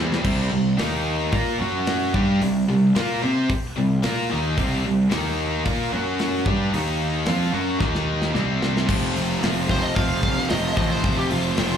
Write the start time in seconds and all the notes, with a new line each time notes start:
Already playing: E2 C3 E3 G3 C4
0.00 E4
0.12 snare
0.23 C2 C3 G3 C4, kick, crash
0.51 C2 C3 G3
0.78 D#2 D#3 A#3 D#4, snare, open hi-hat
1.32 A#2 A#3 F4 A#4, kick, open hi-hat
1.60 F#2 F#3 C#4 F#4
1.87 snare, open hi-hat
2.14 G2 G3 D4 G4, kick
2.42 C2 C3 G3, open hi-hat
2.69 C2 C3 G3
2.95 A#2 A#3 F4 A#4, snare, open hi-hat
3.22 C3 C4 G4 C5
3.49 muted distorted electric guitar stroke, muted picked electric bass stroke, kick, open hi-hat
3.77 C2 C3 G3
4.03 A#2 A#3 F4 A#4, snare, open hi-hat
4.30 D#2 D#3 A#3 D#4
4.57 C2 C3 G3 C4, kick, open hi-hat
4.84 C2 C3 G3
5.11 D#2 D#3 A#3 D#4, snare, open hi-hat
5.64 A#2 A#3 F4 A#4, kick, open hi-hat
5.92 F#2 F#3 C#4 F#4
6.19 snare, open hi-hat
6.46 G2 G3 D4 G4, kick
6.72 D#2 D#3 A#3 D#4, open hi-hat
7.26 F2 F3 C4 F4, snare, open hi-hat
7.53 F#2 F#3 C#4 F#4
7.80 D#2 D#3 A#3 D#4, kick, snare
7.95 snare
8.22 snare
8.34 C2 C3 G3 C4, snare
8.62 snare
8.77 snare
8.87 F1 F2 C3 F3 A3 C4 F4, kick, crash
9.16 F1, open hi-hat
9.41 F1 F2 C3 F3 A3 C4 F4, snare, open hi-hat
9.69 F2 C3 F3 A3 C4 F4 C5, kick, open hi-hat
9.82 D#5
9.95 F1 F2 C3 F3 A3 C4 F4 F5, kick, open hi-hat
10.23 kick, open hi-hat
10.38 snare
10.49 F1 F2 C3 F3 A3 C4 F4 D#5, snare, open hi-hat
10.76 A1 F2 C3 F3 A3 C4 F4 D#5, kick
10.90 C5
11.03 F1 F2 C3 F3 A3 C4 F4, kick, open hi-hat
11.18 G4
11.31 F1 F4, open hi-hat
11.57 F1 F2 C3 F3 A3 C4 F4, snare, open hi-hat